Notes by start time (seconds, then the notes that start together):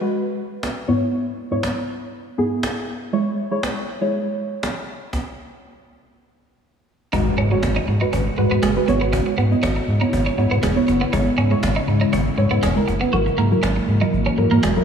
0.01 G#3 F#4 B4
0.63 cajon slap
0.88 G#2 B3 E4 C#5
1.51 G#2 B3 E4 C#5
1.63 cajon slap
2.38 G#2 B3 E4 G#4
2.63 cajon slap
3.13 G#3 E4 C#5
3.51 G#3 E4 C#5
3.63 cajon slap
4.01 G#3 E4 C#5
4.63 cajon slap
5.13 cajon bass, cajon slap
7.13 G#1 B2 G#3 D#4 F#4 B4, cajon bass, impact
7.26 cajon slap
7.38 G#2 C#4
7.51 G#3 F#4 C#5, muted clean electric guitar stroke, cajon slap
7.63 G#1, cajon bass, cajon slap
7.76 D#4, cajon slap
7.88 G#2, muted clean electric guitar stroke
8.01 G#3 D#4 F#4 B4, cajon slap
8.13 G#1 C#4, cajon bass
8.26 cajon slap
8.38 G#2 G#3 F#4 B4, muted clean electric guitar stroke
8.51 G#2 B3, cajon slap
8.63 F#1 G#3, cajon bass, cajon slap
8.76 G#3 F#4 B4, cajon slap
8.88 G#1 C#3 B3 E4 C#5, muted clean electric guitar stroke, cajon slap
9.01 B3, cajon slap
9.13 C#4, cajon bass
9.26 muted clean electric guitar stroke, cajon slap
9.38 G#2 B3, cajon slap
9.51 B3 E4 D#5, cajon slap
9.63 G#1 C#4, cajon bass, cajon slap
9.76 muted clean electric guitar stroke, cajon slap
9.88 G#2, cajon slap
10.01 B3 D#4 E4 C#5, cajon slap
10.13 G#1, cajon bass
10.26 C#4, cajon slap
10.38 G#2 B3 E4 C#5, muted clean electric guitar stroke, cajon slap
10.51 G#2 B3, cajon slap
10.63 E1 G#3, cajon bass, cajon slap
10.76 B3 E4 C#5, cajon slap
10.88 F#1, muted clean electric guitar stroke, cajon slap
11.01 B3, cajon slap
11.13 G#1 G#3 D#4 E4 C#5, cajon bass
11.27 cajon slap
11.38 G#2 C#4, cajon slap
11.51 G#3 E4 C#5, muted clean electric guitar stroke, cajon slap
11.63 G#1, cajon bass, cajon slap
11.76 D#4, cajon slap
11.88 G#2, muted clean electric guitar stroke, cajon slap
12.01 G#3 D#4 E4 C#5, cajon slap
12.13 G#1 C#4, cajon bass
12.27 cajon slap
12.38 G#2 G#3 E4 C#5, muted clean electric guitar stroke, cajon slap
12.51 G#2 B3, cajon slap
12.63 E1 G#3, cajon bass, cajon slap
12.76 G#3 E4 A#4, cajon slap
12.88 F#1, muted clean electric guitar stroke, cajon slap
13.01 B3, cajon slap
13.12 G#1 E3 F#3 A#3 E4 F#4 A#4, cajon slap
13.26 muted clean electric guitar stroke, cajon slap
13.38 G#2 A#3, cajon slap
13.51 F#3 E4 A#4, cajon slap
13.63 G#1 C#4, cajon slap
13.76 muted clean electric guitar stroke, cajon slap
13.88 G#2, cajon slap
14.01 F#3 D#4 E4 A#4, cajon slap
14.13 G#1, cajon slap
14.26 C#4, cajon slap
14.38 G#2 F#3 E4 A#4, muted clean electric guitar stroke, cajon slap
14.51 G#2 A#3, cajon slap
14.63 E1 G#3, cajon slap
14.76 F#3 E4 A#4, cajon slap